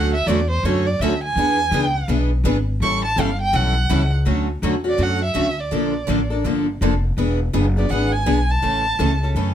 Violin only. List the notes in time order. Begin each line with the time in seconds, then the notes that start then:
Already playing: F#5
0.14 E5
0.27 D5
0.50 C5
0.65 C#5
0.86 D5
1.01 E5
1.23 G#5
2.83 C#6
3.05 A5
3.21 F5
3.41 G5
3.55 F#5
4.89 D5
5.03 F#5
5.24 E5
5.60 D5
7.78 D5
7.90 F#5
8.12 G#5
8.51 A5